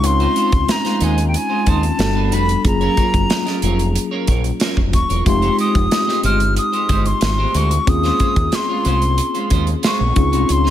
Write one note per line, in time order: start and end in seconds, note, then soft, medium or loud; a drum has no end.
0.00 0.26 C#2 medium
0.00 1.95 G#3 medium
0.00 1.96 C4 medium
0.00 1.95 C#4 medium
0.00 1.95 D#4 medium
0.00 1.96 F4 medium
0.00 muted clean electric guitar stroke soft
0.00 closed hi-hat medium
0.06 0.73 C6 loud
0.20 0.35 G#3 medium
0.20 0.35 D#4 medium
0.20 0.36 F4 medium
0.20 0.36 C5 medium
0.20 closed hi-hat soft
0.36 0.50 G#3 medium
0.36 0.50 D#4 medium
0.36 0.50 F4 medium
0.36 0.50 C5 medium
0.36 closed hi-hat medium
0.52 0.64 C#2 medium
0.52 muted clean electric guitar stroke soft
0.52 kick medium
0.52 closed hi-hat soft
0.68 1.05 A#5 medium
0.68 muted clean electric guitar stroke soft
0.68 snare medium
0.68 closed hi-hat medium
0.84 0.99 G#3 soft
0.84 0.99 D#4 medium
0.84 0.99 F4 medium
0.84 0.98 C5 medium
0.84 snare soft
0.84 closed hi-hat soft
1.00 1.35 D#2 medium
1.00 1.18 G#3 medium
1.00 1.16 D#4 medium
1.00 1.16 F4 medium
1.00 1.16 C5 medium
1.00 1.27 G#5 medium
1.00 closed hi-hat medium
1.17 muted clean electric guitar stroke soft
1.17 closed hi-hat soft
1.28 1.38 G5 medium
1.33 1.71 G#5 medium
1.33 muted clean electric guitar stroke soft
1.33 closed hi-hat medium
1.49 1.64 G#3 medium
1.49 1.64 D#4 medium
1.49 1.64 F4 medium
1.49 1.63 C5 medium
1.66 1.89 D#2 medium
1.66 1.84 G#3 medium
1.66 1.82 D#4 medium
1.66 1.82 F4 medium
1.66 1.81 C5 medium
1.66 2.35 A5 medium
1.66 kick medium
1.66 closed hi-hat medium
1.83 muted clean electric guitar stroke soft
1.83 closed hi-hat soft
1.98 2.31 G1 medium
1.98 2.64 G3 medium
1.98 2.64 B3 medium
1.98 2.65 D4 medium
1.98 2.65 F#4 soft
1.98 2.65 A4 medium
1.98 muted clean electric guitar stroke soft
1.98 snare loud
1.98 closed hi-hat medium
2.15 2.30 B3 medium
2.15 2.31 D4 medium
2.15 2.32 F#4 medium
2.15 2.32 B4 medium
2.31 2.54 F1 medium
2.31 2.45 B3 medium
2.31 2.46 D4 medium
2.31 2.46 F#4 medium
2.31 2.46 B4 medium
2.31 2.65 B5 medium
2.31 closed hi-hat medium
2.48 muted clean electric guitar stroke soft
2.48 closed hi-hat medium
2.64 2.87 F#1 medium
2.64 5.21 F#3 medium
2.64 5.22 A#3 medium
2.64 5.22 C#4 medium
2.64 5.22 F4 medium
2.64 5.23 G#4 medium
2.64 3.92 A#5 medium
2.64 muted clean electric guitar stroke soft
2.64 kick loud
2.64 closed hi-hat medium
2.81 2.96 C#4 medium
2.81 2.96 F4 medium
2.81 2.97 A#4 medium
2.81 2.97 C#5 medium
2.81 closed hi-hat soft
2.97 3.11 C#4 medium
2.97 3.11 F4 medium
2.97 3.11 A#4 medium
2.97 3.11 C#5 medium
2.97 kick medium
2.97 closed hi-hat medium
3.13 3.25 F#1 medium
3.13 muted clean electric guitar stroke soft
3.13 kick medium
3.13 closed hi-hat soft
3.30 muted clean electric guitar stroke soft
3.30 snare medium
3.30 closed hi-hat medium
3.46 3.60 C#4 soft
3.46 3.60 F4 medium
3.46 3.60 A#4 medium
3.46 3.60 D#5 medium
3.46 snare soft
3.46 closed hi-hat soft
3.62 3.96 F1 medium
3.62 3.80 C#4 medium
3.62 3.79 F4 medium
3.62 3.78 A#4 medium
3.62 3.78 C#5 medium
3.62 closed hi-hat medium
3.79 muted clean electric guitar stroke soft
3.79 closed hi-hat soft
3.95 muted clean electric guitar stroke soft
3.95 closed hi-hat medium
4.11 4.26 C#4 medium
4.11 4.27 F4 medium
4.11 4.28 A#4 medium
4.11 4.28 C#5 medium
4.27 4.50 A#1 medium
4.27 4.41 C#4 medium
4.27 4.42 F4 medium
4.27 4.42 A#4 medium
4.27 4.42 C#5 medium
4.27 kick medium
4.27 closed hi-hat medium
4.44 muted clean electric guitar stroke soft
4.44 closed hi-hat soft
4.60 4.78 C#4 medium
4.60 4.77 F4 medium
4.60 4.76 A#4 medium
4.60 4.76 C#5 medium
4.60 snare loud
4.60 closed hi-hat medium
4.77 4.94 F1 medium
4.77 muted clean electric guitar stroke soft
4.77 kick medium
4.93 5.05 D#1 medium
4.93 5.24 C#6 medium
4.93 muted clean electric guitar stroke soft
4.93 kick medium
4.93 closed hi-hat medium
5.09 5.21 E1 medium
5.09 5.24 C#4 soft
5.09 5.24 F4 soft
5.09 5.23 A#4 soft
5.09 5.23 C#5 medium
5.09 closed hi-hat soft
5.25 5.48 F1 medium
5.25 7.83 G#3 medium
5.25 7.83 C4 medium
5.25 7.84 D#4 medium
5.25 7.84 F4 medium
5.25 7.84 G4 medium
5.25 5.57 C6 medium
5.25 muted clean electric guitar stroke soft
5.25 kick medium
5.25 closed hi-hat medium
5.42 5.58 G#3 medium
5.42 5.58 D#4 medium
5.42 5.59 G4 medium
5.42 5.59 C5 medium
5.42 closed hi-hat soft
5.59 5.72 G#3 medium
5.59 5.72 D#4 medium
5.59 5.73 G4 medium
5.59 5.73 C5 medium
5.59 6.21 D#6 medium
5.59 closed hi-hat medium
5.75 5.86 F1 medium
5.75 muted clean electric guitar stroke soft
5.75 kick medium
5.75 closed hi-hat soft
5.91 muted clean electric guitar stroke soft
5.91 snare loud
5.91 closed hi-hat medium
6.07 6.22 G#3 soft
6.07 6.22 D#4 medium
6.07 6.21 G4 medium
6.07 6.21 C5 medium
6.07 snare soft
6.24 6.57 G1 medium
6.24 6.41 G#3 medium
6.24 6.40 D#4 medium
6.24 6.39 G4 medium
6.24 6.39 C5 medium
6.24 6.55 F6 loud
6.24 closed hi-hat medium
6.40 muted clean electric guitar stroke soft
6.40 closed hi-hat soft
6.56 7.08 D#6 loud
6.56 muted clean electric guitar stroke soft
6.56 closed hi-hat medium
6.72 6.87 G#3 soft
6.72 6.87 D#4 soft
6.72 6.87 G4 medium
6.72 6.86 C5 medium
6.72 closed hi-hat soft
6.89 7.12 G1 medium
6.89 7.06 G#3 medium
6.89 7.06 D#4 medium
6.89 7.05 G4 medium
6.89 7.05 C5 medium
6.89 kick medium
6.89 closed hi-hat medium
7.06 7.58 C6 medium
7.06 muted clean electric guitar stroke soft
7.06 closed hi-hat soft
7.21 7.44 G#1 medium
7.21 muted clean electric guitar stroke soft
7.21 snare medium
7.21 closed hi-hat medium
7.38 7.53 G#3 medium
7.38 7.54 D#4 medium
7.38 7.54 G4 medium
7.38 7.55 C5 medium
7.54 7.77 D2 medium
7.54 7.68 G#3 medium
7.54 7.69 D#4 medium
7.54 7.69 G4 medium
7.54 7.69 C5 medium
7.54 7.91 C#6 medium
7.54 closed hi-hat medium
7.71 muted clean electric guitar stroke medium
7.71 closed hi-hat medium
7.87 8.10 D#2 medium
7.87 10.12 A#3 medium
7.87 10.12 C4 medium
7.87 10.12 C#4 medium
7.87 10.13 F4 medium
7.87 10.13 G#4 medium
7.87 8.57 D#6 loud
7.87 muted clean electric guitar stroke soft
7.87 kick loud
7.87 closed hi-hat medium
8.03 8.19 G#3 medium
8.03 8.19 C#4 medium
8.03 8.20 F4 medium
8.03 8.20 C5 medium
8.03 snare soft
8.03 closed hi-hat soft
8.20 8.34 G#3 medium
8.20 8.34 C#4 medium
8.20 8.34 F4 medium
8.20 8.34 C5 medium
8.20 kick medium
8.20 closed hi-hat medium
8.36 8.47 D#2 medium
8.36 muted clean electric guitar stroke soft
8.36 kick medium
8.36 closed hi-hat soft
8.52 9.58 C6 medium
8.52 muted clean electric guitar stroke soft
8.52 snare medium
8.52 closed hi-hat medium
8.69 8.83 G#3 medium
8.69 8.83 C#4 medium
8.69 8.83 F4 medium
8.69 8.83 C#5 medium
8.85 9.19 C2 medium
8.85 9.03 G#3 medium
8.85 9.02 C#4 medium
8.85 9.01 F4 medium
8.85 9.01 C5 medium
8.85 closed hi-hat medium
9.02 muted clean electric guitar stroke soft
9.02 closed hi-hat soft
9.18 muted clean electric guitar stroke soft
9.18 closed hi-hat medium
9.34 9.49 G#3 medium
9.34 9.48 C#4 medium
9.34 9.48 F4 medium
9.34 9.48 C5 medium
9.34 closed hi-hat soft
9.50 9.73 D#2 medium
9.50 9.68 G#3 medium
9.50 9.67 C#4 medium
9.50 9.66 F4 medium
9.50 9.66 C5 medium
9.50 kick medium
9.50 closed hi-hat medium
9.67 muted clean electric guitar stroke soft
9.67 closed hi-hat soft
9.83 10.00 G#3 medium
9.83 9.99 C#4 medium
9.83 9.99 F4 medium
9.83 9.98 C5 medium
9.83 10.53 C#6 medium
9.83 snare loud
9.83 closed hi-hat medium
9.99 10.11 A#1 medium
9.99 muted clean electric guitar stroke soft
10.15 10.33 C#2 loud
10.15 10.70 C4 medium
10.15 10.70 C#4 medium
10.15 10.70 D#4 medium
10.15 10.70 F4 medium
10.15 10.70 G#4 medium
10.15 muted clean electric guitar stroke soft
10.15 kick loud
10.15 closed hi-hat medium
10.32 10.44 C2 medium
10.32 10.47 G#3 soft
10.32 10.46 D#4 soft
10.32 10.46 F4 soft
10.32 10.46 C5 medium
10.32 closed hi-hat medium
10.48 10.70 C#2 medium
10.48 10.70 C6 medium
10.48 muted clean electric guitar stroke soft
10.48 closed hi-hat medium
10.64 10.70 G#3 medium
10.64 10.70 D#4 medium
10.64 10.70 F4 medium
10.64 10.70 C5 medium
10.64 snare soft